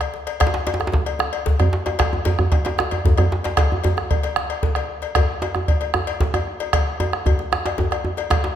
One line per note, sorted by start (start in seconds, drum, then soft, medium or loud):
0.01 bombo rim medium
0.01 cowbell soft
0.01 djembe bass soft
0.14 djembe slap soft
0.27 cowbell soft
0.27 djembe slap medium
0.40 bombo rim loud
0.40 bombo low medium
0.40 cowbell medium
0.40 djembe tone medium
0.40 djembe bass medium
0.47 djembe slap medium
0.54 bombo rim soft
0.54 djembe slap medium
0.54 djembe slap soft
0.67 cowbell medium
0.67 djembe slap medium
0.74 djembe slap medium
0.80 bombo rim medium
0.80 djembe slap soft
0.80 djembe tone medium
0.87 djembe slap medium
0.92 bombo rim soft
0.92 bombo low medium
0.92 djembe slap soft
0.92 djembe slap medium
0.92 djembe bass medium
1.06 bombo rim soft
1.06 cowbell soft
1.06 djembe slap medium
1.19 bombo rim medium
1.19 djembe tone medium
1.33 cowbell medium
1.33 djembe slap soft
1.46 bombo low medium
1.46 djembe slap medium
1.46 djembe bass medium
1.59 bombo rim medium
1.59 cowbell soft
1.59 djembe slap soft
1.59 djembe tone medium
1.59 djembe bass loud
1.73 djembe slap medium
1.86 cowbell soft
1.86 djembe slap medium
1.99 bombo rim medium
1.99 bombo low medium
1.99 cowbell medium
1.99 djembe slap medium
1.99 djembe tone medium
1.99 djembe bass medium
2.13 bombo rim soft
2.13 djembe slap soft
2.13 djembe tone medium
2.25 cowbell medium
2.25 djembe slap medium
2.25 djembe bass medium
2.39 bombo rim medium
2.39 djembe slap soft
2.39 djembe tone medium
2.39 djembe bass loud
2.52 bombo rim soft
2.52 bombo low loud
2.52 cowbell medium
2.52 djembe slap medium
2.52 djembe slap soft
2.65 bombo rim soft
2.65 cowbell soft
2.65 djembe slap medium
2.78 bombo rim loud
2.78 djembe slap medium
2.78 djembe tone medium
2.91 cowbell soft
2.91 djembe slap soft
2.91 djembe tone medium
3.05 bombo low loud
3.05 djembe slap medium
3.05 djembe bass medium
3.18 bombo rim medium
3.18 cowbell medium
3.18 djembe slap soft
3.18 djembe tone medium
3.18 djembe bass loud
3.32 djembe slap medium
3.44 cowbell soft
3.44 djembe slap medium
3.57 bombo rim loud
3.57 bombo low loud
3.57 cowbell medium
3.57 djembe slap medium
3.57 djembe tone medium
3.57 djembe bass medium
3.71 bombo rim soft
3.71 djembe slap soft
3.71 djembe tone medium
3.84 cowbell soft
3.84 djembe slap medium
3.84 djembe bass medium
3.97 bombo rim medium
3.97 djembe slap soft
3.97 djembe tone medium
4.11 bombo rim soft
4.11 bombo low loud
4.11 cowbell medium
4.11 djembe slap soft
4.11 djembe bass medium
4.23 bombo rim soft
4.23 cowbell medium
4.23 djembe slap medium
4.36 bombo rim medium
4.36 djembe tone medium
4.50 cowbell medium
4.50 djembe slap soft
4.63 bombo low loud
4.63 djembe slap medium
4.63 djembe bass medium
4.75 bombo rim medium
4.75 cowbell soft
4.75 djembe slap soft
4.75 djembe tone medium
5.02 cowbell soft
5.02 djembe slap medium
5.15 bombo rim medium
5.15 bombo low medium
5.15 cowbell medium
5.15 djembe slap soft
5.15 djembe tone medium
5.15 djembe bass medium
5.29 djembe slap soft
5.42 cowbell soft
5.42 djembe slap medium
5.55 bombo rim medium
5.55 djembe tone medium
5.68 bombo low loud
5.68 cowbell soft
5.81 cowbell soft
5.81 djembe slap medium
5.94 bombo rim medium
5.94 djembe slap soft
5.94 djembe tone medium
6.07 cowbell medium
6.20 bombo low medium
6.20 djembe slap medium
6.20 djembe bass medium
6.34 bombo rim medium
6.34 cowbell soft
6.34 djembe slap soft
6.34 djembe tone medium
6.47 bombo rim soft
6.60 cowbell medium
6.60 djembe slap medium
6.73 bombo rim medium
6.73 bombo low loud
6.73 cowbell medium
6.73 djembe tone medium
6.73 djembe bass medium
6.87 bombo rim soft
6.87 djembe slap soft
7.00 cowbell medium
7.00 djembe slap medium
7.00 djembe tone loud
7.13 bombo rim medium
7.13 djembe slap soft
7.13 djembe tone medium
7.26 bombo rim soft
7.26 bombo low loud
7.26 cowbell medium
7.26 djembe slap soft
7.26 djembe tone medium
7.26 djembe bass medium
7.39 bombo rim soft
7.39 djembe slap medium
7.52 bombo rim medium
7.52 djembe slap medium
7.52 djembe tone medium
7.66 cowbell medium
7.66 djembe slap medium
7.66 djembe slap soft
7.78 djembe slap medium
7.78 djembe tone loud
7.78 djembe bass medium
7.91 bombo rim medium
7.91 cowbell soft
7.91 djembe slap soft
7.91 djembe tone medium
8.05 djembe tone medium
8.17 cowbell medium
8.17 djembe slap medium
8.30 bombo rim loud
8.30 bombo low loud
8.30 cowbell medium
8.30 djembe slap medium
8.30 djembe tone medium
8.30 djembe bass medium
8.44 bombo rim soft
8.44 djembe slap medium
8.44 djembe slap soft